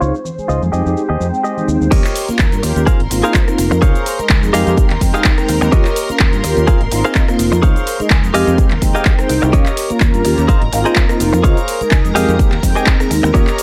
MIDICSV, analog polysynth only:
0, 0, Header, 1, 2, 480
1, 0, Start_track
1, 0, Key_signature, -4, "minor"
1, 0, Tempo, 476190
1, 12, Time_signature, 4, 2, 24, 8
1, 13737, End_track
2, 0, Start_track
2, 0, Title_t, "Analog polysynth"
2, 0, Program_c, 0, 90
2, 7, Note_on_c, 0, 56, 96
2, 10, Note_on_c, 0, 60, 89
2, 12, Note_on_c, 0, 63, 89
2, 14, Note_on_c, 0, 65, 106
2, 133, Note_off_c, 0, 56, 0
2, 135, Note_off_c, 0, 60, 0
2, 136, Note_off_c, 0, 63, 0
2, 137, Note_off_c, 0, 65, 0
2, 377, Note_on_c, 0, 56, 87
2, 383, Note_on_c, 0, 63, 83
2, 386, Note_on_c, 0, 68, 96
2, 703, Note_off_c, 0, 56, 0
2, 706, Note_off_c, 0, 63, 0
2, 707, Note_off_c, 0, 68, 0
2, 728, Note_on_c, 0, 56, 92
2, 731, Note_on_c, 0, 60, 82
2, 733, Note_on_c, 0, 63, 86
2, 736, Note_on_c, 0, 67, 104
2, 944, Note_off_c, 0, 56, 0
2, 945, Note_off_c, 0, 60, 0
2, 946, Note_off_c, 0, 63, 0
2, 948, Note_off_c, 0, 67, 0
2, 967, Note_on_c, 0, 56, 96
2, 970, Note_on_c, 0, 60, 86
2, 973, Note_on_c, 0, 63, 88
2, 976, Note_on_c, 0, 67, 103
2, 1093, Note_off_c, 0, 56, 0
2, 1095, Note_off_c, 0, 60, 0
2, 1096, Note_off_c, 0, 63, 0
2, 1098, Note_off_c, 0, 67, 0
2, 1207, Note_on_c, 0, 56, 93
2, 1211, Note_on_c, 0, 60, 85
2, 1213, Note_on_c, 0, 63, 87
2, 1216, Note_on_c, 0, 79, 102
2, 1549, Note_off_c, 0, 56, 0
2, 1551, Note_off_c, 0, 60, 0
2, 1552, Note_off_c, 0, 63, 0
2, 1554, Note_off_c, 0, 79, 0
2, 1579, Note_on_c, 0, 56, 94
2, 1582, Note_on_c, 0, 60, 84
2, 1585, Note_on_c, 0, 63, 84
2, 1589, Note_on_c, 0, 79, 102
2, 1904, Note_off_c, 0, 56, 0
2, 1905, Note_off_c, 0, 60, 0
2, 1907, Note_off_c, 0, 63, 0
2, 1908, Note_off_c, 0, 79, 0
2, 1928, Note_on_c, 0, 58, 101
2, 1931, Note_on_c, 0, 61, 93
2, 1933, Note_on_c, 0, 65, 95
2, 1937, Note_on_c, 0, 67, 113
2, 2054, Note_off_c, 0, 58, 0
2, 2055, Note_off_c, 0, 61, 0
2, 2056, Note_off_c, 0, 65, 0
2, 2058, Note_off_c, 0, 67, 0
2, 2300, Note_on_c, 0, 58, 93
2, 2304, Note_on_c, 0, 61, 85
2, 2306, Note_on_c, 0, 65, 86
2, 2309, Note_on_c, 0, 70, 107
2, 2624, Note_off_c, 0, 58, 0
2, 2626, Note_off_c, 0, 61, 0
2, 2627, Note_off_c, 0, 65, 0
2, 2629, Note_off_c, 0, 70, 0
2, 2648, Note_on_c, 0, 58, 98
2, 2651, Note_on_c, 0, 61, 88
2, 2653, Note_on_c, 0, 65, 89
2, 2655, Note_on_c, 0, 67, 108
2, 2864, Note_off_c, 0, 58, 0
2, 2865, Note_off_c, 0, 61, 0
2, 2866, Note_off_c, 0, 65, 0
2, 2867, Note_off_c, 0, 67, 0
2, 2887, Note_on_c, 0, 58, 100
2, 2890, Note_on_c, 0, 60, 92
2, 2892, Note_on_c, 0, 63, 91
2, 2895, Note_on_c, 0, 65, 110
2, 3013, Note_off_c, 0, 58, 0
2, 3015, Note_off_c, 0, 60, 0
2, 3015, Note_off_c, 0, 63, 0
2, 3017, Note_off_c, 0, 65, 0
2, 3129, Note_on_c, 0, 58, 101
2, 3132, Note_on_c, 0, 60, 89
2, 3135, Note_on_c, 0, 63, 93
2, 3138, Note_on_c, 0, 65, 109
2, 3470, Note_off_c, 0, 58, 0
2, 3472, Note_off_c, 0, 60, 0
2, 3473, Note_off_c, 0, 63, 0
2, 3474, Note_off_c, 0, 65, 0
2, 3499, Note_on_c, 0, 58, 95
2, 3502, Note_on_c, 0, 60, 87
2, 3505, Note_on_c, 0, 63, 90
2, 3507, Note_on_c, 0, 65, 107
2, 3824, Note_off_c, 0, 58, 0
2, 3825, Note_off_c, 0, 60, 0
2, 3827, Note_off_c, 0, 63, 0
2, 3828, Note_off_c, 0, 65, 0
2, 3850, Note_on_c, 0, 56, 99
2, 3852, Note_on_c, 0, 60, 93
2, 3855, Note_on_c, 0, 63, 93
2, 3858, Note_on_c, 0, 65, 110
2, 3975, Note_off_c, 0, 56, 0
2, 3976, Note_off_c, 0, 60, 0
2, 3977, Note_off_c, 0, 63, 0
2, 3979, Note_off_c, 0, 65, 0
2, 4219, Note_on_c, 0, 56, 91
2, 4225, Note_on_c, 0, 63, 86
2, 4228, Note_on_c, 0, 68, 101
2, 4544, Note_off_c, 0, 56, 0
2, 4547, Note_off_c, 0, 63, 0
2, 4548, Note_off_c, 0, 68, 0
2, 4569, Note_on_c, 0, 56, 97
2, 4573, Note_on_c, 0, 60, 87
2, 4575, Note_on_c, 0, 63, 89
2, 4577, Note_on_c, 0, 67, 105
2, 4784, Note_off_c, 0, 56, 0
2, 4786, Note_off_c, 0, 60, 0
2, 4787, Note_off_c, 0, 63, 0
2, 4788, Note_off_c, 0, 67, 0
2, 4810, Note_on_c, 0, 56, 102
2, 4813, Note_on_c, 0, 60, 94
2, 4815, Note_on_c, 0, 63, 94
2, 4818, Note_on_c, 0, 67, 113
2, 4935, Note_off_c, 0, 56, 0
2, 4936, Note_off_c, 0, 60, 0
2, 4937, Note_off_c, 0, 63, 0
2, 4939, Note_off_c, 0, 67, 0
2, 5050, Note_on_c, 0, 56, 98
2, 5053, Note_on_c, 0, 60, 88
2, 5056, Note_on_c, 0, 63, 90
2, 5058, Note_on_c, 0, 79, 113
2, 5390, Note_off_c, 0, 56, 0
2, 5392, Note_off_c, 0, 60, 0
2, 5394, Note_off_c, 0, 63, 0
2, 5394, Note_off_c, 0, 79, 0
2, 5421, Note_on_c, 0, 56, 99
2, 5423, Note_on_c, 0, 60, 88
2, 5426, Note_on_c, 0, 63, 90
2, 5428, Note_on_c, 0, 79, 107
2, 5745, Note_off_c, 0, 56, 0
2, 5746, Note_off_c, 0, 60, 0
2, 5747, Note_off_c, 0, 63, 0
2, 5748, Note_off_c, 0, 79, 0
2, 5768, Note_on_c, 0, 58, 101
2, 5771, Note_on_c, 0, 61, 95
2, 5774, Note_on_c, 0, 65, 95
2, 5777, Note_on_c, 0, 67, 115
2, 5894, Note_off_c, 0, 58, 0
2, 5895, Note_off_c, 0, 61, 0
2, 5897, Note_off_c, 0, 65, 0
2, 5898, Note_off_c, 0, 67, 0
2, 6138, Note_on_c, 0, 58, 96
2, 6141, Note_on_c, 0, 61, 86
2, 6143, Note_on_c, 0, 65, 88
2, 6147, Note_on_c, 0, 70, 103
2, 6463, Note_off_c, 0, 58, 0
2, 6465, Note_off_c, 0, 61, 0
2, 6466, Note_off_c, 0, 65, 0
2, 6468, Note_off_c, 0, 70, 0
2, 6488, Note_on_c, 0, 58, 97
2, 6491, Note_on_c, 0, 61, 86
2, 6493, Note_on_c, 0, 65, 87
2, 6495, Note_on_c, 0, 67, 105
2, 6704, Note_off_c, 0, 58, 0
2, 6705, Note_off_c, 0, 61, 0
2, 6706, Note_off_c, 0, 65, 0
2, 6707, Note_off_c, 0, 67, 0
2, 6726, Note_on_c, 0, 58, 100
2, 6729, Note_on_c, 0, 60, 93
2, 6732, Note_on_c, 0, 63, 93
2, 6735, Note_on_c, 0, 65, 110
2, 6853, Note_off_c, 0, 58, 0
2, 6854, Note_off_c, 0, 60, 0
2, 6856, Note_off_c, 0, 63, 0
2, 6857, Note_off_c, 0, 65, 0
2, 6965, Note_on_c, 0, 58, 100
2, 6967, Note_on_c, 0, 60, 91
2, 6970, Note_on_c, 0, 63, 92
2, 6972, Note_on_c, 0, 65, 110
2, 7308, Note_off_c, 0, 58, 0
2, 7309, Note_off_c, 0, 60, 0
2, 7310, Note_off_c, 0, 63, 0
2, 7312, Note_off_c, 0, 65, 0
2, 7337, Note_on_c, 0, 58, 98
2, 7339, Note_on_c, 0, 60, 89
2, 7342, Note_on_c, 0, 63, 92
2, 7343, Note_on_c, 0, 65, 108
2, 7663, Note_off_c, 0, 58, 0
2, 7664, Note_off_c, 0, 60, 0
2, 7665, Note_off_c, 0, 63, 0
2, 7666, Note_off_c, 0, 65, 0
2, 7685, Note_on_c, 0, 56, 103
2, 7688, Note_on_c, 0, 60, 94
2, 7689, Note_on_c, 0, 63, 94
2, 7693, Note_on_c, 0, 65, 110
2, 7812, Note_off_c, 0, 56, 0
2, 7814, Note_off_c, 0, 60, 0
2, 7814, Note_off_c, 0, 63, 0
2, 7816, Note_off_c, 0, 65, 0
2, 8055, Note_on_c, 0, 56, 93
2, 8060, Note_on_c, 0, 63, 85
2, 8063, Note_on_c, 0, 68, 103
2, 8382, Note_off_c, 0, 56, 0
2, 8384, Note_off_c, 0, 63, 0
2, 8386, Note_off_c, 0, 68, 0
2, 8403, Note_on_c, 0, 56, 98
2, 8406, Note_on_c, 0, 60, 90
2, 8409, Note_on_c, 0, 63, 88
2, 8412, Note_on_c, 0, 67, 107
2, 8621, Note_off_c, 0, 56, 0
2, 8623, Note_off_c, 0, 60, 0
2, 8624, Note_off_c, 0, 63, 0
2, 8626, Note_off_c, 0, 67, 0
2, 8646, Note_on_c, 0, 56, 102
2, 8648, Note_on_c, 0, 60, 93
2, 8650, Note_on_c, 0, 63, 92
2, 8653, Note_on_c, 0, 67, 112
2, 8772, Note_off_c, 0, 56, 0
2, 8774, Note_off_c, 0, 60, 0
2, 8775, Note_off_c, 0, 63, 0
2, 8776, Note_off_c, 0, 67, 0
2, 8885, Note_on_c, 0, 56, 99
2, 8887, Note_on_c, 0, 60, 92
2, 8890, Note_on_c, 0, 63, 89
2, 8893, Note_on_c, 0, 79, 112
2, 9228, Note_off_c, 0, 56, 0
2, 9229, Note_off_c, 0, 60, 0
2, 9231, Note_off_c, 0, 63, 0
2, 9232, Note_off_c, 0, 79, 0
2, 9254, Note_on_c, 0, 56, 97
2, 9257, Note_on_c, 0, 60, 91
2, 9260, Note_on_c, 0, 63, 88
2, 9263, Note_on_c, 0, 79, 109
2, 9581, Note_off_c, 0, 56, 0
2, 9583, Note_off_c, 0, 60, 0
2, 9584, Note_off_c, 0, 63, 0
2, 9586, Note_off_c, 0, 79, 0
2, 9604, Note_on_c, 0, 58, 104
2, 9606, Note_on_c, 0, 61, 92
2, 9609, Note_on_c, 0, 65, 94
2, 9611, Note_on_c, 0, 67, 114
2, 9732, Note_off_c, 0, 58, 0
2, 9733, Note_off_c, 0, 61, 0
2, 9734, Note_off_c, 0, 65, 0
2, 9735, Note_off_c, 0, 67, 0
2, 9975, Note_on_c, 0, 58, 94
2, 9980, Note_on_c, 0, 61, 85
2, 9982, Note_on_c, 0, 65, 84
2, 9984, Note_on_c, 0, 70, 104
2, 10302, Note_off_c, 0, 58, 0
2, 10304, Note_off_c, 0, 61, 0
2, 10305, Note_off_c, 0, 65, 0
2, 10307, Note_off_c, 0, 70, 0
2, 10326, Note_on_c, 0, 58, 97
2, 10329, Note_on_c, 0, 61, 88
2, 10332, Note_on_c, 0, 65, 90
2, 10334, Note_on_c, 0, 67, 105
2, 10543, Note_off_c, 0, 58, 0
2, 10544, Note_off_c, 0, 61, 0
2, 10546, Note_off_c, 0, 65, 0
2, 10547, Note_off_c, 0, 67, 0
2, 10566, Note_on_c, 0, 58, 104
2, 10569, Note_on_c, 0, 60, 92
2, 10571, Note_on_c, 0, 63, 93
2, 10574, Note_on_c, 0, 65, 113
2, 10693, Note_off_c, 0, 58, 0
2, 10694, Note_off_c, 0, 60, 0
2, 10695, Note_off_c, 0, 63, 0
2, 10697, Note_off_c, 0, 65, 0
2, 10807, Note_on_c, 0, 58, 98
2, 10811, Note_on_c, 0, 60, 91
2, 10813, Note_on_c, 0, 63, 93
2, 10815, Note_on_c, 0, 65, 109
2, 11149, Note_off_c, 0, 58, 0
2, 11151, Note_off_c, 0, 60, 0
2, 11152, Note_off_c, 0, 63, 0
2, 11153, Note_off_c, 0, 65, 0
2, 11178, Note_on_c, 0, 58, 98
2, 11181, Note_on_c, 0, 60, 88
2, 11183, Note_on_c, 0, 63, 91
2, 11185, Note_on_c, 0, 65, 111
2, 11503, Note_off_c, 0, 58, 0
2, 11505, Note_off_c, 0, 60, 0
2, 11506, Note_off_c, 0, 63, 0
2, 11507, Note_off_c, 0, 65, 0
2, 11527, Note_on_c, 0, 56, 102
2, 11529, Note_on_c, 0, 60, 94
2, 11532, Note_on_c, 0, 63, 93
2, 11534, Note_on_c, 0, 65, 115
2, 11653, Note_off_c, 0, 56, 0
2, 11654, Note_off_c, 0, 60, 0
2, 11656, Note_off_c, 0, 63, 0
2, 11657, Note_off_c, 0, 65, 0
2, 11898, Note_on_c, 0, 56, 97
2, 11903, Note_on_c, 0, 63, 84
2, 11905, Note_on_c, 0, 68, 105
2, 12223, Note_off_c, 0, 56, 0
2, 12226, Note_off_c, 0, 63, 0
2, 12227, Note_off_c, 0, 68, 0
2, 12249, Note_on_c, 0, 56, 97
2, 12251, Note_on_c, 0, 60, 90
2, 12254, Note_on_c, 0, 63, 91
2, 12256, Note_on_c, 0, 67, 108
2, 12464, Note_off_c, 0, 56, 0
2, 12465, Note_off_c, 0, 60, 0
2, 12467, Note_off_c, 0, 63, 0
2, 12468, Note_off_c, 0, 67, 0
2, 12487, Note_on_c, 0, 56, 101
2, 12491, Note_on_c, 0, 60, 92
2, 12492, Note_on_c, 0, 63, 92
2, 12495, Note_on_c, 0, 67, 112
2, 12613, Note_off_c, 0, 56, 0
2, 12615, Note_off_c, 0, 60, 0
2, 12616, Note_off_c, 0, 63, 0
2, 12617, Note_off_c, 0, 67, 0
2, 12727, Note_on_c, 0, 56, 98
2, 12730, Note_on_c, 0, 60, 92
2, 12732, Note_on_c, 0, 63, 92
2, 12735, Note_on_c, 0, 79, 108
2, 13069, Note_off_c, 0, 56, 0
2, 13070, Note_off_c, 0, 60, 0
2, 13072, Note_off_c, 0, 63, 0
2, 13073, Note_off_c, 0, 79, 0
2, 13098, Note_on_c, 0, 56, 97
2, 13101, Note_on_c, 0, 60, 91
2, 13103, Note_on_c, 0, 63, 87
2, 13423, Note_off_c, 0, 56, 0
2, 13425, Note_off_c, 0, 60, 0
2, 13426, Note_off_c, 0, 63, 0
2, 13446, Note_on_c, 0, 58, 106
2, 13450, Note_on_c, 0, 61, 94
2, 13452, Note_on_c, 0, 65, 96
2, 13455, Note_on_c, 0, 67, 117
2, 13573, Note_off_c, 0, 58, 0
2, 13575, Note_off_c, 0, 61, 0
2, 13576, Note_off_c, 0, 65, 0
2, 13577, Note_off_c, 0, 67, 0
2, 13737, End_track
0, 0, End_of_file